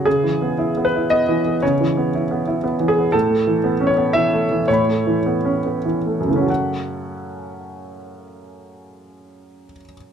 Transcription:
<<
  \new Staff \with { instrumentName = "Grand piano" } { \time 3/4 \key fis \minor \tempo 4 = 111 << { r2. | r2. | r2. | <e'' b'' cis'''>2. |
<fis, cis a cis' fis' a'>2.~ | <fis, cis a cis' fis' a'>2. | } \\ { gis'4. b'8 dis''4 | cis''2 r8 gis'8 | a'4. cis''8 e''4 | cis''2 r4 |
fis''2.~ | fis''2. | } >> }
  \new Staff \with { instrumentName = "Grand piano" } { \time 3/4 \key fis \minor \tuplet 3/2 { cis8 e8 b8 e'8 b8 e'8 b8 e8 b8 } | \tuplet 3/2 { cis8 e8 b8 e'8 b8 e'8 b8 e8 b8 } | \tuplet 3/2 { a,8 a8 e8 b8 cis'8 b8 e8 a8 e8 } | \tuplet 3/2 { a,8 a8 e8 b8 cis'8 b8 e8 a8 e8 } |
r2. | r2. | }
>>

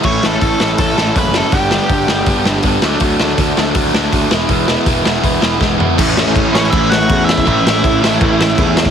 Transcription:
<<
  \new Staff \with { instrumentName = "Lead electric guitar" } { \time 4/4 \key a \major \tempo 4 = 162 <cis'' cis'''>8 <a' a''>4. <a' a''>4 <b' b''>8 <a' a''>8 | <g' g''>2. r4 | r1 | r1 |
r4. <cis' cis''>8 <e' e''>8 <fis' fis''>4 <e' e''>8~ | <e' e''>2.~ <e' e''>8 r8 | }
  \new Staff \with { instrumentName = "Overdriven electric guitar" } { \time 4/4 \key a \major <a, e a cis' e'>8 <a, e a cis' e'>8 <a, e a cis' e'>8 <a, e a cis' e'>8 <a, e a cis' e'>8 <a, e a cis' e'>8 <a, e a cis' e'>8 <a, e a cis' e'>8 | <g, d g b d'>8 <g, d g b d'>8 <g, d g b d'>8 <g, d g b d'>8 <g, d g b d'>8 <g, d g b d'>8 <g, d g b d'>8 <d fis a d'>8 | <d fis a d'>8 <d fis a d'>8 <d fis a d'>8 <d fis a d'>8 <d fis a d'>8 <d fis a d'>8 <d fis a d'>8 <e gis b e'>8 | <e gis b e'>8 <e gis b e'>8 <e gis b e'>8 <e gis b e'>8 <e gis b e'>8 <e gis b e'>8 <e gis b e'>8 <e gis b e'>8 |
<a, e a cis' e'>4. <a, e a cis' e'>2~ <a, e a cis' e'>8 | <a, e a cis' e'>4. <a, e a cis' e'>2~ <a, e a cis' e'>8 | }
  \new Staff \with { instrumentName = "Picked electric bass" } { \clef bass \time 4/4 \key a \major a,,8 a,,8 a,,8 a,,8 a,,8 a,,8 fis,,4 | g,,4 g,,8 g,,8 g,,8 g,,8 g,,8 d,8 | d,8 d,8 d,8 d,8 d,8 d,8 d,8 e,,8 | e,,4 e,,8 e,,8 e,,8 e,,8 e,,4 |
a,,8 a,,8 a,,4 a,,4 e,4 | a,,8 a,,8 a,,4 a,,4 e,4 | }
  \new DrumStaff \with { instrumentName = "Drums" } \drummode { \time 4/4 <cymc bd>8 sn8 <hho bd>8 sn8 <hho bd>8 sn8 <hho bd>8 sn8 | <hho bd>8 sn8 <hho bd>8 sn8 <hho bd>8 sn8 <hho bd>8 sn8 | <hho bd>8 sn8 <hho bd>8 sn8 <hho bd>8 sn8 <hho bd>8 sn8 | <hho bd>8 sn8 <hho bd>8 sn8 <hho bd>8 sn8 <bd sn>8 tomfh8 |
<cymc bd>8 sn8 <cymc bd>8 sn8 <cymc bd>8 sn8 <cymc bd>8 sn16 bd16 | <cymc bd>8 sn8 <cymc bd>8 sn8 <cymc bd>8 sn8 <cymc bd>8 sn16 bd16 | }
>>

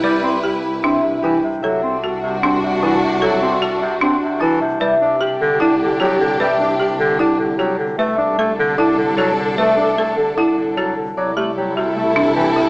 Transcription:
<<
  \new Staff \with { instrumentName = "Harp" } { \time 4/4 \key c \lydian \tempo 4 = 151 <g' d'' e''>4 g'4 e''4 g'4 | e''4 a'4 fis''4 a'4 | e''4 a'4 fis''4 a'4 | e''4 g'4 fis''4 g'4 |
e''4 g'4 fis''4 g'4 | e''4 a'4 fis''4 a'4 | e''4 a'4 fis''4 a'4 | d''4 g'4 e''4 g'4 | }
  \new Staff \with { instrumentName = "Alto flute" } { \time 4/4 \key c \lydian e'2.~ e'8 r8 | fis'1~ | fis'2.~ fis'8 r8 | g'1~ |
g'2.~ g'8 r8 | a'1~ | a'2.~ a'8 r8 | e'1 | }
  \new Staff \with { instrumentName = "Marimba" } { \time 4/4 \key c \lydian b'8 r8 g'8 r8 d'8 r8 e'8 r8 | a'8 r8 fis'8 r8 d'8 r8 e'8 r8 | a'8 r8 fis'8 r8 d'8 r8 e'8 r8 | b'8 r8 g'8 r8 e'8 r8 fis'8 r8 |
b'8 r8 g'8 r8 e'8 r8 fis'8 r8 | b'8 r8 a'8 r8 e'8 r8 fis'8 r8 | b'8 r8 a'8 r8 e'8 r8 fis'8 r8 | r8 g'8 r8 fis'8 r8 d'8 r8 e'8 | }
  \new Staff \with { instrumentName = "String section" } { \time 4/4 \key c \lydian <e' b'>2.~ <e' b'>8 r8 | <d' fis'>1~ | <d' fis'>2.~ <d' fis'>8 r8 | <d' g'>1~ |
<d' g'>2.~ <d' g'>8 r8 | <d' a'>1~ | <d' a'>2.~ <d' a'>8 r8 | <e' a'>1 | }
  \new Staff \with { instrumentName = "Bass clarinet" } { \clef bass \time 4/4 \key c \lydian g8 c'8 r4 c'8 c8 e8 c8 | fis8 c'8 r8 c8 c'8 c8 e8 c8 | fis8 c'8 r8 c8 c'8 c8 e8 c8 | g8 d'8 r8 d8 d'8 d8 fis8 d8 |
g8 d'8 r8 d8 d'8 d8 fis8 d8 | a8 d'8 a8 d8 d'8 d8 fis8 d8 | a8 d'8 a8 d8 d'8 d8 fis8 d8 | fis8 a8 fis8 c8 a8 c8 e8 c8 | }
  \new Staff \with { instrumentName = "Double bass section" } { \clef bass \time 4/4 \key c \lydian c,1 | c,1~ | c,1 | c,1~ |
c,1 | c,1~ | c,1 | c,1 | }
>>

